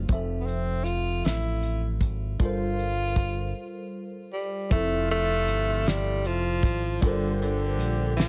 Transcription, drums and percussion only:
0, 0, Header, 1, 2, 480
1, 0, Start_track
1, 0, Key_signature, -1, "major"
1, 0, Tempo, 769231
1, 60, Time_signature, 6, 3, 24, 8
1, 5169, End_track
2, 0, Start_track
2, 0, Title_t, "Drums"
2, 54, Note_on_c, 9, 42, 68
2, 56, Note_on_c, 9, 36, 116
2, 116, Note_off_c, 9, 42, 0
2, 119, Note_off_c, 9, 36, 0
2, 301, Note_on_c, 9, 42, 43
2, 363, Note_off_c, 9, 42, 0
2, 534, Note_on_c, 9, 42, 74
2, 596, Note_off_c, 9, 42, 0
2, 779, Note_on_c, 9, 42, 67
2, 788, Note_on_c, 9, 38, 116
2, 841, Note_off_c, 9, 42, 0
2, 850, Note_off_c, 9, 38, 0
2, 1016, Note_on_c, 9, 42, 53
2, 1078, Note_off_c, 9, 42, 0
2, 1252, Note_on_c, 9, 36, 83
2, 1252, Note_on_c, 9, 42, 71
2, 1315, Note_off_c, 9, 36, 0
2, 1315, Note_off_c, 9, 42, 0
2, 1496, Note_on_c, 9, 36, 110
2, 1496, Note_on_c, 9, 42, 65
2, 1558, Note_off_c, 9, 36, 0
2, 1559, Note_off_c, 9, 42, 0
2, 1741, Note_on_c, 9, 42, 42
2, 1803, Note_off_c, 9, 42, 0
2, 1973, Note_on_c, 9, 36, 87
2, 1973, Note_on_c, 9, 42, 73
2, 2035, Note_off_c, 9, 36, 0
2, 2035, Note_off_c, 9, 42, 0
2, 2939, Note_on_c, 9, 36, 127
2, 2939, Note_on_c, 9, 42, 81
2, 3001, Note_off_c, 9, 42, 0
2, 3002, Note_off_c, 9, 36, 0
2, 3183, Note_on_c, 9, 42, 48
2, 3246, Note_off_c, 9, 42, 0
2, 3418, Note_on_c, 9, 42, 83
2, 3481, Note_off_c, 9, 42, 0
2, 3659, Note_on_c, 9, 42, 71
2, 3668, Note_on_c, 9, 38, 114
2, 3721, Note_off_c, 9, 42, 0
2, 3730, Note_off_c, 9, 38, 0
2, 3898, Note_on_c, 9, 42, 61
2, 3961, Note_off_c, 9, 42, 0
2, 4137, Note_on_c, 9, 36, 101
2, 4138, Note_on_c, 9, 42, 80
2, 4199, Note_off_c, 9, 36, 0
2, 4200, Note_off_c, 9, 42, 0
2, 4382, Note_on_c, 9, 36, 127
2, 4383, Note_on_c, 9, 42, 83
2, 4445, Note_off_c, 9, 36, 0
2, 4445, Note_off_c, 9, 42, 0
2, 4630, Note_on_c, 9, 42, 48
2, 4692, Note_off_c, 9, 42, 0
2, 4865, Note_on_c, 9, 42, 79
2, 4928, Note_off_c, 9, 42, 0
2, 5106, Note_on_c, 9, 42, 79
2, 5115, Note_on_c, 9, 38, 127
2, 5168, Note_off_c, 9, 42, 0
2, 5169, Note_off_c, 9, 38, 0
2, 5169, End_track
0, 0, End_of_file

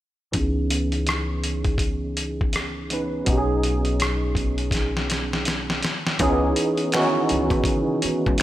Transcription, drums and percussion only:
0, 0, Header, 1, 2, 480
1, 0, Start_track
1, 0, Key_signature, 4, "minor"
1, 0, Tempo, 731707
1, 224, Time_signature, 4, 2, 24, 8
1, 5527, End_track
2, 0, Start_track
2, 0, Title_t, "Drums"
2, 220, Note_on_c, 9, 42, 63
2, 223, Note_on_c, 9, 36, 86
2, 285, Note_off_c, 9, 42, 0
2, 288, Note_off_c, 9, 36, 0
2, 462, Note_on_c, 9, 42, 62
2, 528, Note_off_c, 9, 42, 0
2, 604, Note_on_c, 9, 42, 28
2, 669, Note_off_c, 9, 42, 0
2, 699, Note_on_c, 9, 42, 52
2, 714, Note_on_c, 9, 37, 91
2, 765, Note_off_c, 9, 42, 0
2, 779, Note_off_c, 9, 37, 0
2, 942, Note_on_c, 9, 42, 47
2, 1007, Note_off_c, 9, 42, 0
2, 1079, Note_on_c, 9, 42, 27
2, 1080, Note_on_c, 9, 36, 73
2, 1145, Note_off_c, 9, 42, 0
2, 1146, Note_off_c, 9, 36, 0
2, 1168, Note_on_c, 9, 36, 70
2, 1176, Note_on_c, 9, 42, 65
2, 1233, Note_off_c, 9, 36, 0
2, 1241, Note_off_c, 9, 42, 0
2, 1422, Note_on_c, 9, 42, 53
2, 1488, Note_off_c, 9, 42, 0
2, 1581, Note_on_c, 9, 36, 77
2, 1646, Note_off_c, 9, 36, 0
2, 1659, Note_on_c, 9, 42, 56
2, 1678, Note_on_c, 9, 37, 88
2, 1724, Note_off_c, 9, 42, 0
2, 1743, Note_off_c, 9, 37, 0
2, 1904, Note_on_c, 9, 42, 55
2, 1969, Note_off_c, 9, 42, 0
2, 2141, Note_on_c, 9, 42, 66
2, 2145, Note_on_c, 9, 36, 92
2, 2206, Note_off_c, 9, 42, 0
2, 2210, Note_off_c, 9, 36, 0
2, 2384, Note_on_c, 9, 42, 63
2, 2450, Note_off_c, 9, 42, 0
2, 2524, Note_on_c, 9, 42, 29
2, 2590, Note_off_c, 9, 42, 0
2, 2623, Note_on_c, 9, 42, 54
2, 2637, Note_on_c, 9, 37, 94
2, 2688, Note_off_c, 9, 42, 0
2, 2703, Note_off_c, 9, 37, 0
2, 2854, Note_on_c, 9, 36, 72
2, 2864, Note_on_c, 9, 42, 49
2, 2920, Note_off_c, 9, 36, 0
2, 2930, Note_off_c, 9, 42, 0
2, 3004, Note_on_c, 9, 42, 28
2, 3069, Note_off_c, 9, 42, 0
2, 3090, Note_on_c, 9, 36, 70
2, 3098, Note_on_c, 9, 42, 66
2, 3114, Note_on_c, 9, 38, 39
2, 3156, Note_off_c, 9, 36, 0
2, 3163, Note_off_c, 9, 42, 0
2, 3180, Note_off_c, 9, 38, 0
2, 3258, Note_on_c, 9, 38, 44
2, 3324, Note_off_c, 9, 38, 0
2, 3344, Note_on_c, 9, 42, 56
2, 3356, Note_on_c, 9, 38, 51
2, 3409, Note_off_c, 9, 42, 0
2, 3422, Note_off_c, 9, 38, 0
2, 3499, Note_on_c, 9, 38, 51
2, 3564, Note_off_c, 9, 38, 0
2, 3577, Note_on_c, 9, 42, 57
2, 3595, Note_on_c, 9, 38, 63
2, 3643, Note_off_c, 9, 42, 0
2, 3660, Note_off_c, 9, 38, 0
2, 3738, Note_on_c, 9, 38, 59
2, 3804, Note_off_c, 9, 38, 0
2, 3821, Note_on_c, 9, 42, 55
2, 3835, Note_on_c, 9, 38, 73
2, 3887, Note_off_c, 9, 42, 0
2, 3900, Note_off_c, 9, 38, 0
2, 3979, Note_on_c, 9, 38, 67
2, 4045, Note_off_c, 9, 38, 0
2, 4062, Note_on_c, 9, 42, 73
2, 4065, Note_on_c, 9, 36, 100
2, 4128, Note_off_c, 9, 42, 0
2, 4131, Note_off_c, 9, 36, 0
2, 4305, Note_on_c, 9, 42, 72
2, 4370, Note_off_c, 9, 42, 0
2, 4444, Note_on_c, 9, 42, 30
2, 4510, Note_off_c, 9, 42, 0
2, 4541, Note_on_c, 9, 42, 58
2, 4550, Note_on_c, 9, 26, 86
2, 4556, Note_on_c, 9, 38, 98
2, 4607, Note_off_c, 9, 42, 0
2, 4615, Note_off_c, 9, 26, 0
2, 4621, Note_off_c, 9, 38, 0
2, 4783, Note_on_c, 9, 42, 54
2, 4849, Note_off_c, 9, 42, 0
2, 4922, Note_on_c, 9, 36, 85
2, 4924, Note_on_c, 9, 42, 31
2, 4988, Note_off_c, 9, 36, 0
2, 4989, Note_off_c, 9, 42, 0
2, 5010, Note_on_c, 9, 36, 85
2, 5018, Note_on_c, 9, 42, 74
2, 5075, Note_off_c, 9, 36, 0
2, 5084, Note_off_c, 9, 42, 0
2, 5262, Note_on_c, 9, 42, 62
2, 5328, Note_off_c, 9, 42, 0
2, 5421, Note_on_c, 9, 36, 83
2, 5487, Note_off_c, 9, 36, 0
2, 5496, Note_on_c, 9, 42, 60
2, 5527, Note_off_c, 9, 42, 0
2, 5527, End_track
0, 0, End_of_file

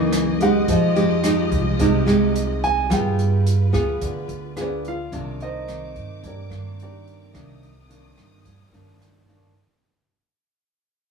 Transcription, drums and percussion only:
0, 0, Header, 1, 2, 480
1, 0, Start_track
1, 0, Key_signature, -3, "minor"
1, 0, Tempo, 555042
1, 588, Time_signature, 4, 2, 24, 8
1, 9606, End_track
2, 0, Start_track
2, 0, Title_t, "Drums"
2, 109, Note_on_c, 9, 37, 56
2, 109, Note_on_c, 9, 42, 42
2, 196, Note_off_c, 9, 37, 0
2, 196, Note_off_c, 9, 42, 0
2, 352, Note_on_c, 9, 42, 26
2, 438, Note_off_c, 9, 42, 0
2, 590, Note_on_c, 9, 36, 56
2, 591, Note_on_c, 9, 42, 40
2, 676, Note_off_c, 9, 36, 0
2, 677, Note_off_c, 9, 42, 0
2, 834, Note_on_c, 9, 42, 25
2, 920, Note_off_c, 9, 42, 0
2, 1070, Note_on_c, 9, 37, 59
2, 1070, Note_on_c, 9, 42, 44
2, 1157, Note_off_c, 9, 37, 0
2, 1157, Note_off_c, 9, 42, 0
2, 1310, Note_on_c, 9, 36, 53
2, 1312, Note_on_c, 9, 42, 24
2, 1396, Note_off_c, 9, 36, 0
2, 1399, Note_off_c, 9, 42, 0
2, 1550, Note_on_c, 9, 36, 57
2, 1552, Note_on_c, 9, 42, 39
2, 1637, Note_off_c, 9, 36, 0
2, 1639, Note_off_c, 9, 42, 0
2, 1796, Note_on_c, 9, 37, 55
2, 1796, Note_on_c, 9, 42, 27
2, 1882, Note_off_c, 9, 37, 0
2, 1882, Note_off_c, 9, 42, 0
2, 2037, Note_on_c, 9, 42, 41
2, 2124, Note_off_c, 9, 42, 0
2, 2280, Note_on_c, 9, 42, 24
2, 2367, Note_off_c, 9, 42, 0
2, 2514, Note_on_c, 9, 36, 62
2, 2519, Note_on_c, 9, 37, 59
2, 2519, Note_on_c, 9, 42, 46
2, 2600, Note_off_c, 9, 36, 0
2, 2606, Note_off_c, 9, 37, 0
2, 2606, Note_off_c, 9, 42, 0
2, 2758, Note_on_c, 9, 42, 25
2, 2844, Note_off_c, 9, 42, 0
2, 2997, Note_on_c, 9, 42, 46
2, 3083, Note_off_c, 9, 42, 0
2, 3233, Note_on_c, 9, 36, 53
2, 3236, Note_on_c, 9, 37, 52
2, 3236, Note_on_c, 9, 42, 29
2, 3319, Note_off_c, 9, 36, 0
2, 3322, Note_off_c, 9, 37, 0
2, 3322, Note_off_c, 9, 42, 0
2, 3472, Note_on_c, 9, 36, 56
2, 3472, Note_on_c, 9, 42, 46
2, 3558, Note_off_c, 9, 36, 0
2, 3558, Note_off_c, 9, 42, 0
2, 3709, Note_on_c, 9, 42, 29
2, 3796, Note_off_c, 9, 42, 0
2, 3950, Note_on_c, 9, 37, 57
2, 3950, Note_on_c, 9, 42, 44
2, 4036, Note_off_c, 9, 37, 0
2, 4036, Note_off_c, 9, 42, 0
2, 4192, Note_on_c, 9, 42, 27
2, 4278, Note_off_c, 9, 42, 0
2, 4431, Note_on_c, 9, 36, 61
2, 4432, Note_on_c, 9, 42, 44
2, 4517, Note_off_c, 9, 36, 0
2, 4518, Note_off_c, 9, 42, 0
2, 4673, Note_on_c, 9, 42, 28
2, 4760, Note_off_c, 9, 42, 0
2, 4916, Note_on_c, 9, 37, 58
2, 4916, Note_on_c, 9, 42, 41
2, 5002, Note_off_c, 9, 37, 0
2, 5002, Note_off_c, 9, 42, 0
2, 5152, Note_on_c, 9, 36, 51
2, 5152, Note_on_c, 9, 42, 27
2, 5238, Note_off_c, 9, 36, 0
2, 5239, Note_off_c, 9, 42, 0
2, 5392, Note_on_c, 9, 36, 58
2, 5394, Note_on_c, 9, 42, 42
2, 5479, Note_off_c, 9, 36, 0
2, 5480, Note_off_c, 9, 42, 0
2, 5634, Note_on_c, 9, 37, 62
2, 5634, Note_on_c, 9, 42, 26
2, 5721, Note_off_c, 9, 37, 0
2, 5721, Note_off_c, 9, 42, 0
2, 5877, Note_on_c, 9, 42, 38
2, 5964, Note_off_c, 9, 42, 0
2, 6119, Note_on_c, 9, 42, 26
2, 6205, Note_off_c, 9, 42, 0
2, 6354, Note_on_c, 9, 36, 61
2, 6354, Note_on_c, 9, 37, 59
2, 6354, Note_on_c, 9, 42, 41
2, 6440, Note_off_c, 9, 36, 0
2, 6441, Note_off_c, 9, 37, 0
2, 6441, Note_off_c, 9, 42, 0
2, 6598, Note_on_c, 9, 42, 28
2, 6685, Note_off_c, 9, 42, 0
2, 6837, Note_on_c, 9, 42, 46
2, 6923, Note_off_c, 9, 42, 0
2, 7071, Note_on_c, 9, 37, 58
2, 7071, Note_on_c, 9, 42, 29
2, 7158, Note_off_c, 9, 37, 0
2, 7158, Note_off_c, 9, 42, 0
2, 7311, Note_on_c, 9, 36, 57
2, 7311, Note_on_c, 9, 42, 43
2, 7397, Note_off_c, 9, 36, 0
2, 7398, Note_off_c, 9, 42, 0
2, 7556, Note_on_c, 9, 42, 29
2, 7642, Note_off_c, 9, 42, 0
2, 7797, Note_on_c, 9, 37, 56
2, 7797, Note_on_c, 9, 42, 42
2, 7883, Note_off_c, 9, 37, 0
2, 7883, Note_off_c, 9, 42, 0
2, 8039, Note_on_c, 9, 42, 27
2, 8125, Note_off_c, 9, 42, 0
2, 9606, End_track
0, 0, End_of_file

